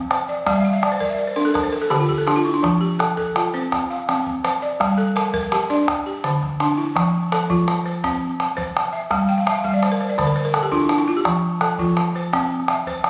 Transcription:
Already playing: balafon C4 F5
0.11 balafon C5, calabash click
0.29 balafon D5
0.38 calabash click
0.46 balafon G3 D5, calabash thump, calabash click
0.55 balafon E5
0.65 balafon F5
0.73 balafon E5
0.83 balafon D5, calabash click
0.92 balafon C5
1.00 balafon A#4 D5, calabash thump
1.09 balafon E5
1.18 balafon D5
1.27 balafon C5
1.36 balafon D4 A#4, calabash click
1.45 balafon A4
1.54 balafon A#4, calabash thump, calabash click
1.63 balafon C5
1.72 balafon A#4
1.82 balafon A4, calabash click
1.90 balafon D3 G4, calabash click
2.00 balafon F4, calabash click
2.09 balafon G4, calabash thump
2.18 balafon A4
2.27 balafon D4 G4, calabash click
2.36 balafon F4
2.45 balafon E4
2.54 balafon D4, calabash click
2.63 balafon F3, calabash thump, calabash click
2.81 balafon G4
2.99 balafon A4, calabash click
3.17 balafon A4, calabash thump
3.36 balafon F4, calabash click
3.54 balafon C4 C5, calabash click
3.72 calabash thump, calabash click
3.90 balafon F5
4.00 calabash click
4.09 balafon C4, calabash click
4.18 calabash click
4.27 calabash thump
4.44 balafon C5, calabash click
4.62 balafon D5
4.72 calabash click
4.80 balafon G3, calabash thump, calabash click
4.98 balafon A4
5.16 balafon A#4, calabash click
5.34 balafon A#4, calabash thump
5.43 calabash click
5.52 balafon G4, calabash click
5.70 balafon D4 D5
5.88 calabash thump, calabash click
6.06 balafon G4
6.24 balafon D3, calabash click
6.34 calabash click
6.43 calabash thump, calabash click
6.60 balafon D4, calabash click
6.77 balafon E4
6.96 balafon F3, calabash thump, calabash click
7.23 calabash click
7.32 balafon A4, calabash click
7.50 balafon F3 F4, calabash thump
7.68 calabash click
7.86 balafon C5, calabash click
8.04 balafon C4, calabash thump, calabash click
8.31 calabash click
8.40 calabash click
8.57 balafon C5, calabash thump, calabash click
8.67 calabash click
8.77 calabash click
8.85 calabash click
8.93 balafon E5
9.11 balafon G3, calabash thump, calabash click
9.29 balafon G5
9.38 balafon F5, calabash click
9.47 balafon E5, calabash click
9.55 balafon F5
9.64 balafon G3 E5, calabash thump
9.74 balafon D5
9.83 balafon C5, calabash click
9.92 balafon A#4
10.01 balafon C5, calabash click
10.09 balafon D5
10.18 balafon D3 C5, calabash thump, calabash click
10.27 balafon A#4
10.36 balafon C5
10.45 balafon A#4, calabash click
10.54 balafon A4, calabash click
10.63 balafon G4
10.72 balafon D4 F4, calabash thump, calabash click
10.81 balafon E4, calabash click
10.89 balafon D4, calabash click
10.98 balafon E4, calabash click
11.08 balafon F4
11.17 balafon G4
11.25 balafon F3, calabash thump, calabash click
11.53 calabash click
11.61 balafon A4, calabash click
11.79 balafon F3 F4, calabash thump
11.97 calabash click
12.15 balafon C5, calabash click
12.33 balafon C4, calabash thump, calabash click
12.42 calabash click
12.60 calabash click
12.68 balafon E5, calabash click
12.87 balafon C5, calabash thump, calabash click
12.95 calabash click
13.04 calabash click

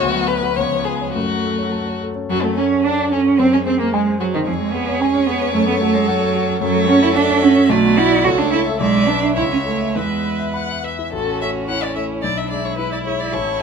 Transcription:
0.00 grand piano D2, cello F#3, viola B3, violin F#4
0.15 grand piano F#3
0.28 violin B4, grand piano B4
0.43 grand piano F#4
0.56 grand piano C#2, cello F3, viola B3, violin C#5
0.72 grand piano F3
0.85 violin G#4, grand piano B4
1.01 grand piano C#5
1.14 grand piano F#2, cello F#3, viola A3, violin F#4
1.30 grand piano F#3
1.44 grand piano A4
1.58 grand piano C#5
1.72 grand piano A5
1.87 grand piano C#5
2.01 grand piano A4
2.16 grand piano C#4
2.29 grand piano F#2, cello F#3, viola F#3, violin F#4
2.43 grand piano F#3, violin A3, viola A3, cello A3
2.57 violin C#4, cello C#4, viola C#4, grand piano A4
2.72 grand piano C#5
2.84 violin D4, cello D4, viola D4, grand piano A5
2.99 grand piano C#5
3.12 violin C#4, cello C#4, viola C#4, grand piano A4
3.26 grand piano C#4
3.38 grand piano F#2, cello C4, violin C4, viola C4
3.52 grand piano G#3, cello C#4, viola C#4, violin C#4
3.65 cello C4, violin C4, viola C4, grand piano G#4
3.79 violin A#3, cello A#3, viola A#3, grand piano C5
3.93 violin G#3, cello G#3, viola G#3, grand piano G#5
4.07 grand piano C5
4.19 cello F#3, viola F#3, violin F#4, grand piano G#4
4.34 viola D#3, cello D#3, grand piano C4, violin D#4
4.46 grand piano F2, cello F3, viola G#4, violin C#5
4.60 cello G#3, grand piano G#3
4.72 cello B3, grand piano G#4
4.88 grand piano C#5
5.00 cello C#4, grand piano G#5
5.15 grand piano C#5
5.27 cello B3, grand piano G#4
5.42 grand piano C#4
5.54 grand piano F#2, cello A3, viola A4
5.68 grand piano A3, cello B3
5.81 cello A3, grand piano F#4
5.95 cello G#3, grand piano C#5
6.07 cello F#3, grand piano F#5
6.21 grand piano C#5
6.35 grand piano F#4
6.48 grand piano C#4
6.61 grand piano F#2, cello F#3, viola A4, violin C#5
6.75 grand piano A3
6.88 cello C#4, grand piano F#4
7.02 cello E4, grand piano C#5
7.15 cello D4, violin E5, grand piano F#5
7.28 grand piano C#5
7.42 cello C#4, grand piano F#4
7.56 grand piano C#4
7.69 grand piano B1, cello A3, viola F#4, violin D5
7.83 grand piano B3
7.97 cello E4, grand piano F#4
8.11 grand piano D5
8.24 grand piano C#2, cello F#4, viola A4, violin C#5
8.38 grand piano A3, cello D4
8.51 cello E4, grand piano A4
8.66 grand piano E5
8.79 grand piano B1, cello G#3, viola D5, violin E5
8.95 grand piano D4
9.07 cello D4, grand piano B4
9.22 grand piano E5
9.36 grand piano C#2, cello E4, viola C#5, violin E5
9.52 grand piano C#4, cello C#4
9.65 cello A3, grand piano A4
9.81 grand piano E5
9.95 grand piano E2, cello G#3, viola B4, violin E5
10.10 grand piano B3
10.24 grand piano B4
10.39 grand piano E5
10.54 violin F#5, grand piano B5
10.69 grand piano E5
10.84 grand piano B4, violin E5
10.99 grand piano E4
11.12 grand piano A1, viola C#4, cello F#4, violin A4
11.41 grand piano A3 C#5, violin E5
11.68 cello E4, grand piano E4 C#5, violin F#5
11.83 violin D5
11.96 grand piano A3 C#5, violin E5
12.22 grand piano B1, cello D4, viola E4, violin D5
12.37 violin E5
12.51 grand piano G#3 E5, violin D5
12.65 violin C#5
12.78 cello E4, grand piano E4 E5, violin B4
12.92 violin D5
13.05 grand piano G#3 E5, violin C#5
13.20 violin D5
13.33 grand piano A1, cello A4, violin C#5

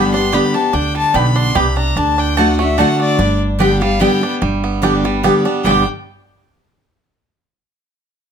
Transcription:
Already playing: upright bass G1, steel-string acoustic guitar G2 D3 G3 B3 G4, five-string banjo G3 B3 D4, fiddle B5
0.14 steel-string acoustic guitar B3 G4, five-string banjo D4, fiddle C6
0.32 steel-string acoustic guitar D3 G3 B3 G4, mandolin B3 G4 D5 G5, five-string banjo G4, fiddle B5
0.54 steel-string acoustic guitar B3 G4, five-string banjo D4, fiddle A5
0.73 upright bass D2, steel-string acoustic guitar D3, five-string banjo D4, fiddle G5
0.95 five-string banjo G3, fiddle A5
1.14 upright bass B1, steel-string acoustic guitar B2, mandolin B3 G4 D5 G5, five-string banjo B3, fiddle B5
1.36 five-string banjo D4, fiddle C6
1.55 upright bass C2, steel-string acoustic guitar C3, mandolin B3 G4 D5 G5, five-string banjo G4, fiddle B5
1.77 five-string banjo D4, fiddle A#5
1.96 upright bass D2, steel-string acoustic guitar D3, five-string banjo D4, fiddle A5
2.18 five-string banjo D4, fiddle G5
2.37 steel-string acoustic guitar D3 A3 D4 F#4, mandolin A3 F#4 D5 A5, five-string banjo D4, fiddle F#5
2.59 five-string banjo A3, steel-string acoustic guitar D4 F#4, fiddle E5
2.78 steel-string acoustic guitar D3 A3 D4 F#4, mandolin A3 F#4 D5 A5, five-string banjo D4, fiddle F#5
3.00 five-string banjo D4, fiddle D5
3.18 upright bass G1, steel-string acoustic guitar G2, five-string banjo D4
3.59 steel-string acoustic guitar D3 G3 B3 G4, mandolin B3 G4 D5 G5, five-string banjo D4, fiddle G5
3.81 five-string banjo G3, steel-string acoustic guitar B3 G4, fiddle F5
4.00 steel-string acoustic guitar D3 G3 B3 G4, mandolin B3 G4 D5 G5, five-string banjo B3, fiddle G5
4.23 steel-string acoustic guitar B3, five-string banjo D4
4.42 upright bass G1, steel-string acoustic guitar G2, five-string banjo G3
4.64 five-string banjo B3
4.82 steel-string acoustic guitar D3 G3 B3 G4, mandolin B3 G4 D5 G5, five-string banjo D4
5.04 five-string banjo G3, steel-string acoustic guitar B3 G4
5.23 steel-string acoustic guitar D3 G3 B3 G4, mandolin B3 G4 D5 G5, five-string banjo B3
5.45 steel-string acoustic guitar B3 G4, five-string banjo D4
5.64 upright bass G1, steel-string acoustic guitar G2 B2 D3 G3 B3 G4, five-string banjo G3 B3, mandolin B3 G4 D5 G5, fiddle G5
5.69 five-string banjo D4 G4

